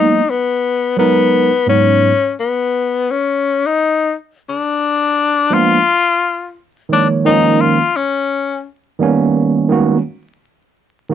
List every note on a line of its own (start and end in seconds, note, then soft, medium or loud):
0.00 0.19 F#3 medium
0.00 0.20 G#3 medium
0.00 0.20 A#3 medium
0.00 0.20 B3 medium
0.00 0.21 D#4 medium
0.00 0.32 D#4 loud
0.30 0.98 B3 medium
0.97 1.49 F#3 medium
0.97 1.50 G#3 medium
0.97 1.64 B3 loud
0.97 1.50 B3 medium
0.97 1.51 D#4 medium
0.97 1.50 A#4 medium
1.66 2.10 G#2 medium
1.66 2.11 F#3 medium
1.66 2.11 G#3 medium
1.66 2.12 B3 medium
1.66 2.12 C#4 medium
1.66 2.34 C#4 medium
1.66 2.12 D#4 medium
2.40 3.12 B3 medium
3.11 3.68 C#4 medium
3.66 4.14 D#4 loud
4.49 5.55 D4 medium
5.50 5.78 F3 medium
5.50 5.78 G#3 medium
5.50 5.78 A#3 medium
5.50 5.79 B3 medium
5.50 5.79 D4 medium
5.50 6.57 F4 loud
6.89 7.24 D#3 medium
6.89 7.25 F3 medium
6.89 7.25 G#3 medium
6.89 7.26 A#3 medium
6.89 7.08 D4 medium
6.89 7.35 C#5 medium
7.25 7.77 D#3 medium
7.25 7.78 F3 medium
7.25 7.78 G#3 medium
7.25 7.78 A#3 medium
7.25 7.79 C#4 medium
7.25 7.62 D#4 loud
7.61 7.98 F4 medium
7.97 8.66 C#4 medium
8.99 9.68 D#3 medium
8.99 10.00 G3 medium
8.99 9.69 A#3 medium
8.99 9.70 B3 medium
8.99 10.01 C#4 loud
9.69 9.96 D#3 medium
9.69 9.96 G#3 medium
9.69 9.97 A#3 medium
9.69 9.97 B3 medium
9.69 9.98 F#4 medium
11.09 11.14 D#3 medium
11.09 11.14 G#3 medium
11.09 11.14 A#3 medium